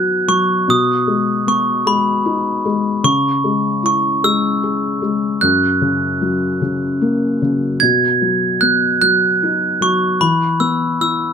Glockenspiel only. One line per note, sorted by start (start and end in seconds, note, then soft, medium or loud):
0.00 0.31 F#6 medium
0.29 0.46 C#6 medium
0.70 1.50 D#6 medium
1.48 1.88 C#6 medium
1.87 2.71 B5 medium
3.04 3.85 C#6 medium
3.86 4.03 C#6 medium
4.24 5.46 E6 medium
5.41 7.37 F#6 medium
7.80 8.63 G#6 medium
8.61 9.00 F#6 medium
9.02 9.84 F#6 medium
9.82 10.19 C#6 medium
10.21 10.62 B5 medium
10.60 10.78 E6 medium
11.01 11.33 E6 medium